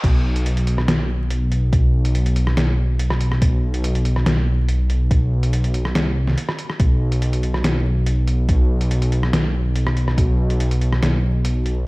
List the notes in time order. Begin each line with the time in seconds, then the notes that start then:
0.04 B1, kick, closed hi-hat, crash
0.36 closed hi-hat
0.46 closed hi-hat
0.57 closed hi-hat
0.67 closed hi-hat
0.78 cross-stick
0.88 B1, snare, closed hi-hat
1.30 closed hi-hat
1.52 closed hi-hat
1.73 B1, kick, closed hi-hat
2.05 closed hi-hat
2.15 closed hi-hat
2.26 closed hi-hat
2.36 closed hi-hat
2.47 cross-stick
2.57 B1, snare, closed hi-hat
2.99 closed hi-hat
3.10 cross-stick
3.21 closed hi-hat
3.32 cross-stick
3.42 B1, kick, closed hi-hat
3.74 closed hi-hat
3.84 closed hi-hat
3.95 closed hi-hat
4.05 closed hi-hat
4.16 cross-stick
4.26 B1, snare, closed hi-hat
4.69 closed hi-hat
4.90 closed hi-hat
5.11 B1, kick, closed hi-hat
5.43 closed hi-hat
5.53 closed hi-hat
5.64 closed hi-hat
5.74 closed hi-hat
5.85 cross-stick
5.95 C2, snare, closed hi-hat
6.27 snare
6.38 closed hi-hat
6.49 cross-stick
6.59 closed hi-hat
6.70 cross-stick
6.80 B1, kick, closed hi-hat
7.12 closed hi-hat
7.22 closed hi-hat
7.33 closed hi-hat
7.43 closed hi-hat
7.54 cross-stick
7.64 B1, snare, closed hi-hat
8.06 closed hi-hat
8.28 closed hi-hat
8.49 B1, kick, closed hi-hat
8.81 closed hi-hat
8.91 closed hi-hat
9.02 closed hi-hat
9.12 closed hi-hat
9.23 cross-stick
9.33 B1, snare, closed hi-hat
9.76 closed hi-hat
9.87 cross-stick
9.97 closed hi-hat
10.08 cross-stick
10.18 B1, kick, closed hi-hat
10.50 closed hi-hat
10.60 closed hi-hat
10.71 closed hi-hat
10.81 closed hi-hat
10.92 cross-stick
11.02 B1, snare, closed hi-hat
11.45 closed hi-hat
11.66 closed hi-hat